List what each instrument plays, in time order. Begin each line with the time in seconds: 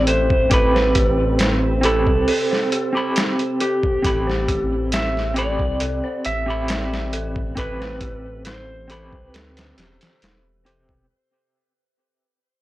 Already playing: detuned saw bass A1, clean electric guitar C4 G4 B5, analog synth pad C4, synth bell G4 A4 C5
0.07 synth bell A4, electric slide guitar C5, closed hi-hat
0.30 kick
0.50 detuned saw bass A1, clean electric guitar C4 G4 B5, synth bell A4, electric slide guitar B4, kick, closed hi-hat
0.74 synth bell C5, snare
0.95 synth bell G4, kick, closed hi-hat
1.39 snare, closed hi-hat
1.81 clean electric guitar C4 G4, synth bell A4, electric slide guitar A4, closed hi-hat
1.85 clean electric guitar B5
2.07 detuned saw bass C2, kick
2.28 synth bell A4, open hi-hat
2.51 synth bell C5, snare
2.72 synth bell G4, closed hi-hat
2.93 clean electric guitar C4 G4
2.97 clean electric guitar B5
3.16 snare, closed hi-hat
3.39 closed hi-hat
3.60 electric slide guitar G4, synth bell A4, closed hi-hat
3.83 kick
4.02 detuned saw bass A1, clean electric guitar C4 G4 B5, synth bell A4, kick, closed hi-hat
4.27 synth bell C5, snare
4.48 synth bell G4, kick, closed hi-hat
4.92 electric slide guitar E5, snare, closed hi-hat
5.17 snare
5.34 clean electric guitar C4 G4, synth bell A4, electric slide guitar D5, closed hi-hat
5.38 clean electric guitar B5
5.59 detuned saw bass C2, kick
5.80 detuned saw bass C2, synth bell A4, closed hi-hat
6.04 synth bell C5
6.25 detuned saw bass A1, synth bell G4, electric slide guitar E5, closed hi-hat
6.46 clean electric guitar C4 G4
6.50 clean electric guitar B5
6.68 snare, closed hi-hat
6.94 snare
7.13 synth bell A4, closed hi-hat
7.36 kick
7.55 detuned saw bass A1, clean electric guitar C4 G4, synth bell A4, electric slide guitar B4, kick, closed hi-hat
7.60 clean electric guitar B5
7.80 synth bell C5, snare
8.01 synth bell G4, kick, closed hi-hat
8.45 electric slide guitar C5, snare, closed hi-hat
8.88 clean electric guitar C4 G4, synth bell A4, closed hi-hat
8.92 clean electric guitar B5
9.13 detuned saw bass C2, kick
9.30 electric slide guitar B4
9.34 detuned saw bass D2, synth bell A4, snare, closed hi-hat
9.57 synth bell C5, snare, closed hi-hat
9.78 detuned saw bass E1, synth bell G4, snare, closed hi-hat
10.01 snare, closed hi-hat
10.22 detuned saw bass E1, snare, closed hi-hat
10.65 clean electric guitar C4 G4 C5, synth bell A4, closed hi-hat
10.89 kick